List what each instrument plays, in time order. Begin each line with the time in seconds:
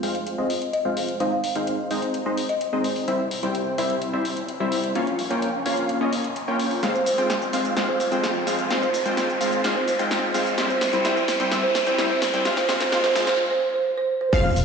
Already playing: riser
0.03 analog synth bass F1, supersaw synth G#3 C4 F4 C5 F5, open hi-hat
0.15 closed hi-hat
0.27 closed hi-hat
0.38 analog synth bass F1, supersaw synth G#3 C4 F4 C5 D#5
0.50 open hi-hat
0.62 closed hi-hat
0.73 marimba D#5, closed hi-hat
0.85 analog synth bass F1, supersaw synth G#3 C4 F4 C5 F5
0.97 open hi-hat
1.09 closed hi-hat
1.20 analog synth bass G#1, supersaw synth G#3 C4 D#4 C5 D#5, marimba F5, closed hi-hat
1.32 marimba F5
1.44 open hi-hat
1.55 analog synth bass G#1, supersaw synth G#3 C4 D#4 C5 F5, closed hi-hat
1.67 closed hi-hat
1.91 analog synth bass G#1, supersaw synth G#3 C4 D#4 C5 D#5, open hi-hat
2.02 closed hi-hat
2.14 closed hi-hat
2.26 analog synth bass G#1, supersaw synth G#3 C4 D#4 C5 D#5
2.37 open hi-hat
2.49 marimba D#5, closed hi-hat
2.61 closed hi-hat
2.73 analog synth bass G#1, supersaw synth G#3 C4 D#4 C5 D#5
2.84 open hi-hat
2.96 open hi-hat
3.08 analog synth bass C2, supersaw synth G3 C4 E4 C5 E5, closed hi-hat
3.31 open hi-hat
3.43 analog synth bass C2, supersaw synth G3 C4 E4 C5 G5, closed hi-hat
3.55 closed hi-hat
3.78 analog synth bass C2, supersaw synth G3 C4 E4 C5 E5, open hi-hat
3.90 closed hi-hat
4.02 closed hi-hat
4.13 analog synth bass C2, supersaw synth G3 C4 E4 C5 E5
4.25 open hi-hat
4.37 closed hi-hat
4.49 closed hi-hat
4.60 analog synth bass C2, supersaw synth G3 C4 E4 C5 E5
4.72 open hi-hat
4.84 closed hi-hat
4.95 analog synth bass A#1, supersaw synth A#3 C#4 F4 C#5 F5, closed hi-hat
5.07 closed hi-hat
5.19 open hi-hat
5.31 analog synth bass A#1, supersaw synth A#3 C#4 F4 C#5 G5, closed hi-hat
5.42 closed hi-hat
5.66 analog synth bass A#1, supersaw synth A#3 C#4 F4 C#5 F5, open hi-hat
5.77 closed hi-hat
5.89 closed hi-hat
6.01 analog synth bass A#1, supersaw synth A#3 C#4 F4 C#5 D#5
6.13 open hi-hat
6.24 closed hi-hat
6.36 closed hi-hat
6.48 analog synth bass A#1, supersaw synth A#3 C#4 F4 C#5 G5
6.59 open hi-hat
6.71 open hi-hat
6.83 analog synth bass F1, supersaw synth G#3 C4 F4 C5 F5, snare, closed hi-hat, shaker
6.95 marimba C5, shaker
7.06 marimba C5, open hi-hat, shaker
7.18 analog synth bass F1, supersaw synth G#3 C4 F4 C5 G5, closed hi-hat, shaker
7.30 snare, closed hi-hat, shaker
7.42 shaker
7.53 analog synth bass F1, supersaw synth G#3 C4 F4 C5 F5, open hi-hat, shaker
7.65 closed hi-hat, shaker
7.77 analog synth bass F1, supersaw synth G#3 C4 F4 C5 F5, snare, closed hi-hat, shaker
7.88 marimba C5
8.00 marimba C5, open hi-hat, shaker
8.12 analog synth bass F2, supersaw synth G#3 C4 F4 C5 G5, closed hi-hat, shaker
8.24 snare, closed hi-hat, shaker
8.47 analog synth bass F2, supersaw synth G#3 C4 F4 C5 F5, open hi-hat, shaker
8.59 closed hi-hat, shaker
8.70 analog synth bass G#1, supersaw synth G#3 C4 F4 C5 F5, snare, closed hi-hat, shaker
8.82 marimba C5, shaker
8.94 marimba C5, open hi-hat, shaker
9.05 analog synth bass G#1, supersaw synth G#3 C4 F4 C5 G5, closed hi-hat, shaker
9.17 snare, closed hi-hat, shaker
9.29 shaker
9.41 analog synth bass G#1, supersaw synth G#3 C4 F4 C5 F5, open hi-hat, shaker
9.53 closed hi-hat, shaker
9.64 analog synth bass G#1, supersaw synth G#3 C4 F4 C5 F5, snare, closed hi-hat, shaker
9.76 marimba C5
9.88 marimba C5, open hi-hat, shaker
9.99 analog synth bass G#2, supersaw synth G#3 C4 F4 C5 G5, closed hi-hat, shaker
10.11 snare, closed hi-hat, shaker
10.34 analog synth bass G#2, supersaw synth G#3 C4 F4 C5 F5, open hi-hat, shaker
10.46 open hi-hat, shaker
10.58 analog synth bass C2, supersaw synth G3 C4 E4 C5 E5, snare, closed hi-hat, shaker
10.70 marimba C5, shaker
10.81 marimba C5, snare, open hi-hat, shaker
10.93 analog synth bass C2, supersaw synth G3 C4 E4 C5 G5, closed hi-hat, shaker
11.05 analog synth bass C2, supersaw synth G3 C4 E4 C5 E5, snare, closed hi-hat, shaker
11.17 marimba C5, shaker
11.28 marimba C5, snare, open hi-hat, shaker
11.40 analog synth bass C2, supersaw synth G3 C4 E4 C5 G5, closed hi-hat, shaker
11.52 analog synth bass C2, supersaw synth G3 C4 E4 C5 E5, snare, closed hi-hat, shaker
11.63 marimba C5
11.75 snare, open hi-hat, shaker
11.87 analog synth bass C2, supersaw synth G3 C4 E4 C5 G5, closed hi-hat, shaker
11.98 analog synth bass C2, supersaw synth G3 C4 E4 C5 E5, snare, closed hi-hat, shaker
12.10 marimba C5
12.22 marimba C5, snare, open hi-hat, shaker
12.34 analog synth bass C2, supersaw synth G3 C4 E4 C5 G5, closed hi-hat, shaker
12.45 analog synth bass A#1, supersaw synth G#3 C4 F4 C5 F5, snare, closed hi-hat, shaker
12.57 marimba C5, snare, closed hi-hat, shaker
12.69 analog synth bass A#1, supersaw synth G#3 C4 F4 C5 F5, snare, open hi-hat, shaker
12.80 marimba C5, snare, closed hi-hat, shaker
12.92 analog synth bass A#1, supersaw synth G#3 C4 F4 C5 F5, snare, closed hi-hat, shaker
13.04 marimba C5, snare, shaker
13.16 analog synth bass A#1, supersaw synth G#3 C4 F4 C5 F5, snare, open hi-hat, shaker
13.27 marimba C5, snare, closed hi-hat, shaker
13.51 marimba C5
13.74 marimba C5
13.98 marimba C5
14.21 marimba C5
14.33 analog synth bass F1, supersaw synth G#3 C4 F4 C5 F5, synth pluck F5, kick, closed hi-hat, crash, impact, shaker
14.45 shaker
14.56 open hi-hat, shaker